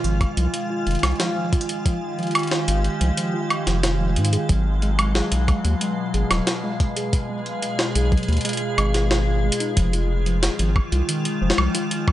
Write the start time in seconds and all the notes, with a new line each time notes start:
Already playing: D#3 G#3 F4 F5
0.04 G#1 F3, closed hi-hat
0.21 kick, closed hi-hat, high woodblock
0.37 C2 F3, closed hi-hat
0.54 closed hi-hat
0.70 F4
0.87 F1 D#3, closed hi-hat
0.91 closed hi-hat
0.95 closed hi-hat
0.99 closed hi-hat
1.03 C2, snare, closed hi-hat, high woodblock
1.07 closed hi-hat
1.11 closed hi-hat
1.16 closed hi-hat
1.20 F3, snare, closed hi-hat
1.36 F3
1.53 F4, kick, closed hi-hat
1.61 closed hi-hat
1.69 closed hi-hat
1.86 F3 G4, kick, closed hi-hat
2.19 F3, closed hi-hat
2.23 closed hi-hat
2.27 closed hi-hat
2.31 closed hi-hat
2.35 closed hi-hat, high woodblock
2.39 closed hi-hat
2.43 closed hi-hat
2.47 closed hi-hat
2.52 F4, snare
2.68 G#1 D#3, closed hi-hat
2.84 closed hi-hat
3.01 C2 F3, closed hi-hat
3.17 F3, closed hi-hat
3.34 F4
3.50 closed hi-hat, high woodblock
3.67 F1 F3, snare, closed hi-hat
3.83 snare, closed hi-hat
4.00 F3
4.16 G#2 B2 F#3, closed hi-hat
4.25 closed hi-hat
4.33 G#4, closed hi-hat
4.49 G#1 F#3, kick, closed hi-hat
4.82 G#3, closed hi-hat
4.99 G#3, closed hi-hat, high woodblock
5.15 G#4, snare
5.32 B1, closed hi-hat
5.48 G#3, kick, closed hi-hat, high woodblock
5.65 D#2, closed hi-hat
5.81 G#3, closed hi-hat
6.14 G#1 G#4, closed hi-hat
6.31 D#1 F#3, snare, closed hi-hat, high woodblock
6.47 snare, closed hi-hat
6.64 G#3
6.80 G#3 G#4, kick, closed hi-hat
6.97 G#4, closed hi-hat
7.13 kick, closed hi-hat
7.30 G#3
7.46 closed hi-hat
7.62 G#3, closed hi-hat
7.79 snare
7.95 B1 G#4, closed hi-hat
8.12 F#3, kick, closed hi-hat
8.17 closed hi-hat
8.23 closed hi-hat
8.28 D#2, closed hi-hat
8.33 closed hi-hat
8.37 closed hi-hat
8.41 closed hi-hat
8.45 G#3, closed hi-hat
8.49 closed hi-hat
8.53 closed hi-hat
8.57 closed hi-hat
8.61 G#3
8.78 G#1 G#3, closed hi-hat, high woodblock
8.94 G#4, snare, closed hi-hat
9.11 G#4, snare
9.44 G#3
9.52 closed hi-hat
9.60 D#4, closed hi-hat
9.77 F1 D#3 F3 G#3 F4, kick, closed hi-hat
9.93 F4, closed hi-hat
10.26 F3, closed hi-hat
10.43 snare, closed hi-hat
10.59 G#1 F3, closed hi-hat
10.76 kick, high woodblock
10.92 C2 F4, closed hi-hat
11.09 D#3, closed hi-hat
11.25 closed hi-hat
11.42 F1 F3
11.50 snare
11.58 C2 F3, high woodblock
11.75 F4, closed hi-hat
11.91 closed hi-hat
12.08 F3, kick, high woodblock